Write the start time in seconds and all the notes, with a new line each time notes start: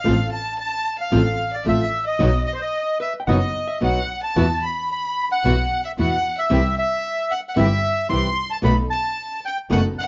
Already playing: F5
0.04 A1 F3 A3 C4 F4 A4
0.33 A5
0.60 A5
0.99 F5
1.12 A1 F3 A3 C4 F4 A4
1.53 D5
1.65 A1 F3 A3 C4 F4 A4 E5
2.07 D#5
2.19 B1 B2 F#3 B3 D#4 F#4
2.47 D#5
2.54 C5
2.61 D#5
3.00 B4 E5
3.20 G5
3.27 F#1 B2 F#3 B3 D#4 F#4 D#5 F#5
3.68 E5
3.81 B1 B2 F#3 B3 D#4 F#4 D#5 F#5
4.24 A5
4.36 E2 B2 E3 B3 E4 F#4
4.63 B5
4.91 B5
5.32 F#5
5.45 B1 B2 E3 B3 E4 F#4
5.85 E5
5.98 E2 B2 E3 B3 E4 F#4 F#5
6.39 E5
6.50 C2 C3 E3 G3 C4 E4 G4
6.78 E5
7.31 F#5
7.49 F#5
7.56 G1 C3 E3 G3 C4 E4 G4 E5
8.09 C2 C3 E3 G3 C4 E4 G4 C6
8.50 A5
8.62 B1 B2 D#3 A3 B3 D#4 F#4 A4 B5
8.90 A5
9.45 G5
9.70 F#1 B2 D#3 A3 B3 D#4 F#4 A4 F#5
9.98 F#5